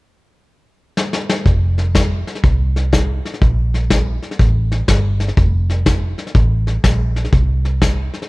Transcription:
0.97 snare medium
1.13 snare medium
1.29 snare medium
1.45 2.21 F1 medium
1.45 kick medium
1.45 snare soft
1.78 snare soft
1.95 kick medium
1.95 snare loud
1.95 hi-hat pedal medium
2.27 snare soft
2.35 snare soft
2.44 3.19 C2 medium
2.44 kick loud
2.44 snare soft
2.76 snare soft
2.93 kick medium
2.93 snare medium
2.93 hi-hat pedal medium
3.25 snare soft
3.34 snare soft
3.42 4.17 A#1 medium
3.42 kick medium
3.42 snare soft
3.74 snare soft
3.90 kick medium
3.90 snare medium
3.90 hi-hat pedal medium
4.22 snare soft
4.31 snare soft
4.39 4.81 A1 medium
4.39 kick loud
4.39 snare soft
4.72 snare soft
4.88 5.30 G1 medium
4.88 kick medium
4.88 snare loud
4.88 hi-hat pedal medium
5.20 snare soft
5.28 snare soft
5.37 6.13 F1 medium
5.37 kick loud
5.37 snare soft
5.70 snare soft
5.86 kick medium
5.86 snare loud
5.86 hi-hat pedal medium
6.18 snare soft
6.27 snare soft
6.35 6.77 A1 medium
6.35 kick loud
6.35 snare soft
6.67 snare soft
6.84 7.25 A#1 medium
6.84 kick medium
6.84 snare loud
6.84 hi-hat pedal medium
7.16 snare soft
7.25 snare soft
7.32 8.08 C2 medium
7.32 kick loud
7.32 snare soft
7.65 snare soft
7.82 kick medium
7.82 snare medium
7.82 hi-hat pedal medium
8.14 snare soft
8.22 snare soft

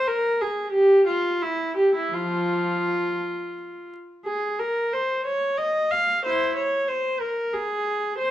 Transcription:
0.08 0.39 A#4 medium
0.41 0.73 G#4 medium
0.72 1.05 G4 medium
1.07 1.40 F4 medium
1.42 1.76 E4 medium
1.77 1.94 G4 medium
1.95 2.12 E4 medium
2.13 3.16 F3 medium
2.13 3.92 F4 medium
4.25 4.56 G#4 medium
4.59 4.92 A#4 medium
4.93 5.26 C5 medium
5.25 5.58 C#5 medium
5.57 5.91 D#5 medium
5.91 6.23 F5 medium
6.25 6.55 E4 medium
6.25 6.56 C5 medium
6.56 6.87 C#5 medium
6.88 7.20 C5 medium
7.20 7.53 A#4 medium
7.53 8.17 G#4 medium
8.18 8.31 C5 medium

